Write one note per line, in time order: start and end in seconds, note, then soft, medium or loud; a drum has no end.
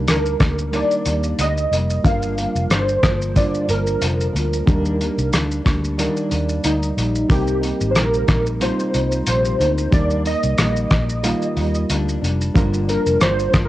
0.00 0.65 G3 medium
0.00 0.65 D4 medium
0.00 0.66 D#4 medium
0.00 0.66 A#4 medium
0.08 0.34 D2 medium
0.08 0.41 G3 medium
0.08 0.40 A#3 medium
0.08 0.38 D4 medium
0.08 0.76 A#4 medium
0.08 cross-stick medium
0.08 closed hi-hat medium
0.08 shaker medium
0.26 shaker soft
0.39 0.81 D2 medium
0.39 0.72 G3 soft
0.39 0.73 A#3 medium
0.39 0.73 D4 medium
0.39 kick medium
0.39 cross-stick medium
0.39 closed hi-hat medium
0.39 shaker soft
0.59 shaker medium
0.71 1.06 D#3 medium
0.71 1.96 G3 medium
0.71 1.06 G3 medium
0.71 1.96 A#3 medium
0.71 1.06 A#3 medium
0.71 1.04 D4 medium
0.71 1.97 D#4 medium
0.71 1.97 A#4 medium
0.71 1.42 D5 medium
0.71 closed hi-hat medium
0.71 shaker medium
0.91 shaker soft
1.05 1.32 D#2 loud
1.05 1.40 A#3 medium
1.05 1.38 D4 medium
1.05 closed hi-hat medium
1.05 shaker medium
1.09 1.38 G3 soft
1.23 shaker medium
1.39 1.65 D2 loud
1.39 1.72 G3 medium
1.39 1.72 A#3 medium
1.39 2.07 D#5 loud
1.39 closed hi-hat medium
1.39 shaker medium
1.57 shaker soft
1.71 1.98 F1 medium
1.71 2.06 G3 soft
1.71 2.05 A#3 soft
1.71 closed hi-hat soft
1.71 shaker soft
1.90 shaker medium
2.03 2.45 G1 loud
2.03 2.38 G2 medium
2.03 2.38 D3 medium
2.03 2.38 F3 medium
2.03 3.27 G3 medium
2.03 2.38 A#3 medium
2.03 3.28 D4 medium
2.03 2.36 D4 medium
2.03 3.28 F4 medium
2.03 3.29 A#4 medium
2.03 2.67 F5 loud
2.03 kick loud
2.03 closed hi-hat medium
2.03 shaker medium
2.22 shaker medium
2.37 2.70 F3 soft
2.37 2.71 A#3 soft
2.37 2.70 D4 medium
2.37 closed hi-hat soft
2.37 shaker soft
2.55 2.67 F1 medium
2.55 shaker medium
2.69 2.96 G1 medium
2.69 3.03 D3 medium
2.69 3.03 F3 soft
2.69 3.04 A#3 medium
2.69 3.38 C5 loud
2.69 cross-stick medium
2.69 closed hi-hat medium
2.69 shaker medium
2.73 3.01 D4 medium
2.89 shaker soft
3.03 3.44 G1 medium
3.03 3.36 A#3 medium
3.03 3.36 D4 soft
3.03 kick medium
3.03 cross-stick medium
3.03 closed hi-hat medium
3.03 shaker medium
3.07 3.35 F3 soft
3.22 shaker medium
3.35 3.69 G2 medium
3.35 3.69 D3 medium
3.35 3.69 F3 medium
3.35 4.59 G3 medium
3.35 3.69 A#3 medium
3.35 4.59 D4 medium
3.35 3.66 D4 medium
3.35 4.60 F4 medium
3.35 4.60 C5 medium
3.35 3.70 D5 medium
3.35 kick medium
3.35 closed hi-hat medium
3.35 shaker medium
3.54 shaker soft
3.67 3.95 G1 medium
3.67 4.00 F3 soft
3.67 4.01 A#3 soft
3.67 4.01 D4 medium
3.67 5.29 A#4 medium
3.67 closed hi-hat medium
3.67 shaker medium
3.87 shaker medium
4.00 4.28 F1 medium
4.00 4.34 D3 medium
4.00 4.34 F3 medium
4.00 4.34 A#3 medium
4.00 4.32 D4 medium
4.00 closed hi-hat medium
4.00 shaker medium
4.21 shaker medium
4.33 4.61 D2 medium
4.33 4.67 F3 soft
4.33 4.67 A#3 soft
4.33 4.67 D4 medium
4.33 closed hi-hat soft
4.33 shaker soft
4.53 shaker medium
4.66 5.08 D#2 medium
4.66 5.00 D#3 medium
4.66 5.90 G3 medium
4.66 5.00 G3 loud
4.66 5.00 A#3 medium
4.66 5.91 D4 medium
4.66 4.98 D4 loud
4.66 5.91 D#4 medium
4.66 5.92 A#4 medium
4.66 kick loud
4.66 closed hi-hat medium
4.66 shaker medium
4.85 shaker medium
4.99 5.33 G3 medium
4.99 5.34 A#3 medium
4.99 5.33 D4 medium
4.99 closed hi-hat soft
4.99 shaker soft
5.18 5.30 C2 medium
5.18 shaker medium
5.32 5.59 D2 medium
5.32 5.66 G3 medium
5.32 5.66 A#3 medium
5.32 5.63 D4 medium
5.32 cross-stick medium
5.32 closed hi-hat medium
5.32 shaker medium
5.51 shaker soft
5.65 6.07 D2 medium
5.65 5.99 A#3 medium
5.65 5.98 D4 medium
5.65 kick medium
5.65 cross-stick medium
5.65 closed hi-hat medium
5.65 shaker medium
5.69 5.98 G3 soft
5.84 shaker medium
5.98 6.31 D#3 medium
5.98 7.22 G3 medium
5.98 6.32 G3 medium
5.98 6.31 A#3 medium
5.98 6.29 D4 loud
5.98 7.23 D#4 medium
5.98 7.23 A#4 medium
5.98 7.22 D5 medium
5.98 closed hi-hat medium
5.98 shaker medium
6.17 shaker soft
6.30 6.58 D#2 loud
6.30 6.63 G3 soft
6.30 6.64 A#3 medium
6.30 6.64 D4 medium
6.30 closed hi-hat medium
6.30 shaker medium
6.49 shaker medium
6.64 6.91 D2 medium
6.64 6.97 G3 medium
6.64 6.96 A#3 medium
6.64 7.32 D#4 medium
6.64 closed hi-hat medium
6.64 shaker medium
6.83 shaker medium
6.97 7.23 A#1 medium
6.97 7.28 G3 soft
6.97 7.29 A#3 soft
6.97 closed hi-hat soft
6.97 shaker soft
7.15 shaker medium
7.29 7.71 C2 medium
7.29 7.62 C3 medium
7.29 8.53 G3 medium
7.29 7.63 G3 medium
7.29 7.62 A#3 medium
7.29 8.53 C4 medium
7.29 8.54 D#4 medium
7.29 7.60 D#4 medium
7.29 7.92 G4 loud
7.29 8.54 A#4 medium
7.29 kick loud
7.29 closed hi-hat medium
7.29 shaker medium
7.47 shaker soft
7.61 7.94 G3 soft
7.61 7.96 A#3 medium
7.61 7.95 D#4 medium
7.61 closed hi-hat soft
7.61 shaker soft
7.81 7.96 G#1 loud
7.81 shaker medium
7.91 8.28 C3 medium
7.91 7.96 C5 medium
7.95 8.22 A#1 loud
7.95 8.28 G3 medium
7.95 8.28 A#3 medium
7.95 8.26 D#4 medium
7.95 8.64 A#4 loud
7.95 cross-stick medium
7.95 closed hi-hat medium
7.95 shaker medium
8.14 shaker soft
8.27 8.69 A#1 medium
8.27 8.60 G3 soft
8.27 8.61 A#3 medium
8.27 8.61 D#4 medium
8.27 kick medium
8.27 cross-stick medium
8.27 closed hi-hat medium
8.27 shaker soft
8.47 shaker medium
8.60 8.94 C3 medium
8.60 9.84 G3 medium
8.60 8.94 G3 medium
8.60 8.95 A#3 medium
8.60 9.85 C4 medium
8.60 9.85 D#4 medium
8.60 8.92 D#4 medium
8.60 9.85 F4 medium
8.60 9.27 C5 loud
8.60 closed hi-hat medium
8.60 shaker medium
8.80 shaker soft
8.93 9.21 C2 medium
8.93 9.27 G3 soft
8.93 9.28 A#3 medium
8.93 9.27 D#4 medium
8.93 closed hi-hat medium
8.93 shaker medium
9.12 shaker medium
9.26 9.53 A#1 loud
9.26 9.59 C3 medium
9.26 9.60 G3 medium
9.26 9.60 A#3 medium
9.26 9.95 C5 loud
9.26 closed hi-hat medium
9.26 shaker medium
9.30 9.58 D#4 medium
9.45 shaker medium
9.59 9.86 D2 loud
9.59 9.92 G3 soft
9.59 9.93 A#3 medium
9.59 9.92 D#4 medium
9.59 closed hi-hat soft
9.59 shaker soft
9.78 shaker medium
9.91 10.33 D#2 loud
9.91 10.25 D#3 medium
9.91 11.15 G3 medium
9.91 10.26 G3 medium
9.91 11.16 A#3 medium
9.91 10.25 A#3 medium
9.91 10.27 D4 medium
9.91 11.16 D#4 medium
9.91 11.17 A#4 medium
9.91 10.24 D5 loud
9.91 kick loud
9.91 closed hi-hat medium
9.91 shaker medium
10.10 shaker soft
10.26 10.57 G3 soft
10.26 10.58 A#3 medium
10.26 11.86 D#5 loud
10.26 closed hi-hat soft
10.26 shaker soft
10.43 10.55 C2 loud
10.43 shaker medium
10.57 10.85 A#1 medium
10.57 10.90 D#3 medium
10.57 10.91 G3 medium
10.57 10.91 A#3 medium
10.57 cross-stick medium
10.57 closed hi-hat medium
10.57 shaker medium
10.76 shaker soft
10.91 11.32 A#1 loud
10.91 11.23 G3 soft
10.91 11.24 A#3 soft
10.91 kick loud
10.91 cross-stick medium
10.91 closed hi-hat medium
10.91 shaker medium
11.09 shaker medium
11.23 11.57 D#3 medium
11.23 12.47 G3 medium
11.23 11.57 G3 medium
11.23 12.47 A#3 medium
11.23 11.57 A#3 loud
11.23 12.48 D#4 medium
11.23 12.48 F4 loud
11.23 closed hi-hat medium
11.23 shaker medium
11.42 shaker soft
11.57 11.83 D#2 loud
11.57 11.89 G3 medium
11.57 11.90 A#3 medium
11.57 closed hi-hat medium
11.57 shaker medium
11.74 shaker medium
11.90 12.16 D2 loud
11.90 12.23 G3 medium
11.90 12.22 A#3 medium
11.90 12.20 D4 medium
11.90 closed hi-hat medium
11.90 shaker medium
12.09 shaker medium
12.21 12.49 F1 medium
12.21 12.55 A#3 medium
12.21 12.55 D4 medium
12.21 closed hi-hat soft
12.21 shaker medium
12.26 12.55 G3 medium
12.41 shaker medium
12.54 12.96 G1 loud
12.54 12.87 G2 medium
12.54 12.88 D3 loud
12.54 12.88 F3 loud
12.54 13.68 G3 medium
12.54 12.88 A#3 loud
12.54 13.68 D4 medium
12.54 12.86 D4 loud
12.54 13.68 F4 medium
12.54 13.68 A#4 loud
12.54 kick loud
12.54 closed hi-hat medium
12.54 shaker medium
12.73 shaker medium
12.87 13.20 F3 soft
12.87 13.22 A#3 medium
12.87 13.20 D4 medium
12.87 13.22 A#4 loud
12.87 closed hi-hat medium
12.87 shaker soft
13.06 13.18 F1 loud
13.06 shaker medium
13.20 13.47 G1 medium
13.20 13.53 D3 medium
13.20 13.54 F3 medium
13.20 13.54 A#3 medium
13.20 13.51 D4 medium
13.20 13.66 C5 loud
13.20 cross-stick medium
13.20 closed hi-hat medium
13.20 shaker medium
13.39 shaker soft
13.52 13.68 G1 medium
13.52 13.68 A#3 soft
13.52 13.68 D4 medium
13.52 kick medium
13.52 cross-stick medium
13.52 closed hi-hat medium
13.52 shaker medium
13.57 13.68 F3 soft
13.65 13.68 A#4 loud